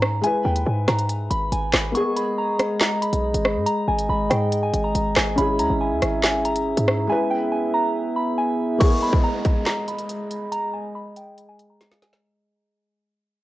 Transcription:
Already playing: G#2 C#4 E4 G#4 A#5
0.02 cross-stick
0.21 G#3 E4 G#5, closed hi-hat
0.26 B4
0.45 D#2 G5
0.56 closed hi-hat
0.66 G#2 G#5
0.88 G#2 A#5, cross-stick, snare, closed hi-hat
0.99 closed hi-hat
1.09 closed hi-hat
1.30 G#1 B5, closed hi-hat
1.52 G#1 G#5, closed hi-hat
1.74 G#1, cross-stick, snare, clap
1.92 G#3 A#3 B3 G#4 D#5 C#6, closed hi-hat
1.97 G#4
2.16 B5, closed hi-hat
2.38 A#5
2.59 cross-stick, closed hi-hat
2.81 A#5, snare, clap, closed hi-hat
3.02 B5, closed hi-hat
3.13 B1, closed hi-hat
3.34 G#1, closed hi-hat
3.45 cross-stick
3.56 G#2
3.66 A#5, closed hi-hat
3.88 G#1 G#5
3.99 closed hi-hat
4.09 G#1 B5
4.30 G#2 G5, cross-stick, closed hi-hat
4.52 closed hi-hat
4.63 G#5
4.74 G#1, closed hi-hat
4.84 A#5
4.95 G#1, closed hi-hat
5.16 G#1 G#5, cross-stick, snare, clap
5.36 G#1 C#4 E4 E5 B5, closed hi-hat
5.41 G#4
5.59 D#2 A#5, closed hi-hat
5.70 G#1
5.81 G#5
5.91 D#2
6.02 G#1, cross-stick, closed hi-hat
6.24 G#5, snare, clap, closed hi-hat
6.45 A#5, closed hi-hat
6.56 closed hi-hat
6.77 G#2, closed hi-hat
6.88 cross-stick
7.07 G#3 B3 E4 G#4 G#5
7.12 B4
7.30 G5
7.52 G#5
7.74 A#5
8.16 B5
8.38 G#5
8.78 G#3 A#3 B3 G#4 D#5 C#6, kick, closed hi-hat, crash, downlifter
8.83 G#4
9.03 B5
9.13 kick
9.24 A#5
9.45 kick, closed hi-hat
9.66 A#5, snare, clap, closed hi-hat
9.88 B5, closed hi-hat
9.99 closed hi-hat
10.09 closed hi-hat
10.31 closed hi-hat
10.52 A#5, closed hi-hat
10.73 G#5
10.95 B5
11.16 G5, closed hi-hat
11.38 closed hi-hat
11.49 G#5
11.59 closed hi-hat
11.70 A#5
11.81 snare, closed hi-hat
11.92 snare
12.02 G#5, snare, closed hi-hat
12.13 snare

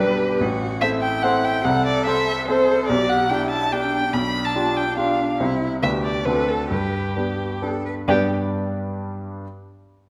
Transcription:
Already playing: B1
0.00 G3 D4 G4 B4
0.41 A1 F#4
0.81 C4 E4 A4 C5 E5
1.02 G5
1.23 C4 A4 C5 F#5
1.45 G5
1.65 C2 A4 F#5
1.86 D5
2.06 C4 A4 C5 E5
2.48 C4 A4 C5
2.88 B1 G4 D5
3.09 F#5
3.30 D4 E4 G4 G5
3.51 A5
3.72 D4 G4 G5
4.13 B1 D4 B5
4.45 A5
4.55 D4 F4 G4
4.77 G5
4.97 D4 F4 G4 F5
5.40 C2 C4 E4 G4
5.82 D2 B3 D4 G4 E5
6.04 D5
6.25 D2 C4 D4 F#4 A4 B4
6.49 A4
6.71 G2 G4 B4
7.17 B3 D4 G4
7.62 B3 D4 G4 A4
7.86 B4
8.08 G2 G3 B3 D4 G4 D5

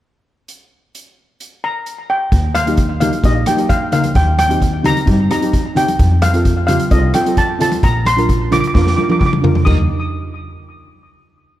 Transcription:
0.48 closed hi-hat
0.95 closed hi-hat
1.40 closed hi-hat
1.64 A#5
1.86 closed hi-hat
2.10 G5
2.32 D#2, kick, closed hi-hat
2.55 F5, cross-stick, closed hi-hat, high conga
2.66 A#3 D#4 G4, closed hi-hat
2.77 kick, closed hi-hat
3.00 A#3 D#4 G4 F5, closed hi-hat, high conga, low conga
3.13 closed hi-hat
3.23 A#1 A#3 D#4 G4 D#5, kick, closed hi-hat
3.46 A#3 D#4 G4 G5, cross-stick, closed hi-hat, high conga
3.57 A#3 D#4 G4, closed hi-hat
3.69 F5, kick, closed hi-hat
3.92 A#3 D#4 A#4 F5, closed hi-hat, low conga
4.04 closed hi-hat, high conga
4.15 D#2 G5, kick, closed hi-hat
4.38 G5, cross-stick, closed hi-hat, high conga
4.49 C4 D#4 G4, closed hi-hat
4.62 kick, closed hi-hat
4.83 C4 D#4 G4 A#5, closed hi-hat, high conga, low conga
4.97 closed hi-hat
5.06 G2 C4 D#4 G4, kick, closed hi-hat
5.30 C4 D#4 G4 A#5, cross-stick, closed hi-hat, high conga
5.41 C4 D#4 G4, closed hi-hat
5.53 kick, closed hi-hat
5.75 C4 D#4 G4 G5, closed hi-hat, low conga
5.88 closed hi-hat, high conga
5.99 F2, kick, closed hi-hat
6.22 F5, cross-stick, closed hi-hat, high conga
6.34 C4 F4 A4, closed hi-hat
6.45 kick, closed hi-hat
6.67 C4 F4 G4 F5, closed hi-hat, high conga, low conga
6.79 closed hi-hat
6.91 C2 C4 F4 A4 D#5, kick, closed hi-hat
7.14 C4 F4 A4 G5, cross-stick, closed hi-hat, high conga
7.26 C4 F4 A4, closed hi-hat
7.37 A5, kick, closed hi-hat
7.59 C4 F4 A4 A5, closed hi-hat, low conga
7.72 closed hi-hat, high conga
7.83 A#1 A#5, kick, closed hi-hat
8.05 C6, cross-stick, closed hi-hat, high conga
8.17 D4 F4 A#4, closed hi-hat
8.29 kick, closed hi-hat
8.51 D4 F4 A#4 D6, cross-stick, closed hi-hat, high conga, low conga
8.61 D6, closed hi-hat
8.68 D6
8.74 F2 D4 F4 A#4 D6, kick, snare
8.82 D6
8.87 D6, snare
8.96 D4 F4 A#4 D6, high conga
9.04 D6
9.09 D4 F4 A#4 D6, high tom
9.20 D6, kick, mid tom
9.26 D6
9.33 high conga
9.42 D4 F4 A#4, floor tom, low conga
9.55 floor tom, high conga
9.65 D#2 D#4 G4 A#4 D#6, kick, crash, high conga

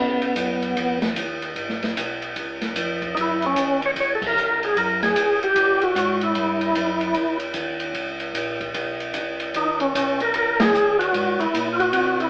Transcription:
Already playing: C#3 B3
0.22 ride
0.35 F#2, kick, hi-hat pedal, ride
0.62 ride
0.76 F2, kick, ride
1.02 snare, ride
1.16 D#2, kick, hi-hat pedal, ride
1.42 ride
1.56 G#1, kick, ride
1.69 snare
1.83 snare, ride
1.96 B1, kick, hi-hat pedal, ride
2.22 ride
2.36 C#2, kick, ride
2.61 snare, ride
2.76 F2, kick, hi-hat pedal, ride
3.02 kick, ride
3.15 F#2 D#4, kick, ride
3.21 E4
3.42 ride
3.46 C#4
3.56 D#2, kick, hi-hat pedal, ride
3.82 C#5, ride
3.96 E2, kick, ride
4.00 C#5
4.15 A4
4.22 kick, crash
4.26 A#4
4.35 C#2, hi-hat pedal
4.63 G#4, ride
4.76 F#2 A#4, kick, ride
5.03 G#4, snare, ride
5.16 E2, kick, hi-hat pedal, ride
5.43 G4, ride
5.56 C#2, kick, ride
5.81 F#4, ride
5.96 G#2, kick, hi-hat pedal, ride
6.21 E4, ride
6.35 G2, kick, ride
6.61 ride
6.75 F#2, kick, hi-hat pedal, ride
7.01 ride
7.14 E2, kick, ride
7.40 ride
7.54 D#2, kick, hi-hat pedal, ride
7.80 ride
7.94 C#2, kick, ride
8.20 ride
8.35 A#1, kick, hi-hat pedal, ride
8.61 kick, ride
8.74 B1, kick, ride
9.00 ride
9.14 C#2, kick, hi-hat pedal, ride
9.40 ride
9.54 D#2 D#4, kick, ride
9.80 C#4, ride
9.95 B1 C#4, kick, hi-hat pedal, ride
10.20 A#4, ride
10.34 C#2 A#4, kick, ride
10.60 G#4, snare, ride
10.74 D#2, hi-hat pedal
10.99 F#4, ride
11.14 G#2, kick, ride
11.39 G#2 E4, ride
11.54 A#2, kick, hi-hat pedal, ride
11.73 F4
11.79 F#4, ride
11.93 C3, kick, ride
12.20 E4, ride

